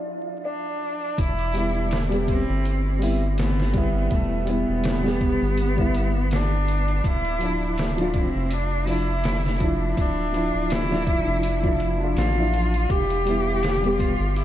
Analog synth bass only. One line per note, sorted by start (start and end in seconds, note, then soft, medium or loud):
1.18 2.45 E1 loud
2.49 4.08 G1 medium
4.11 4.64 E1 medium
4.69 5.38 E1 medium
5.42 7.01 G1 loud
7.04 8.30 D1 medium
8.35 9.94 F1 loud
9.97 10.50 D1 loud
10.54 11.23 D1 medium
11.27 12.15 F1 loud
12.16 12.86 A1 medium
12.90 14.16 E1 loud
14.19 14.45 G1 medium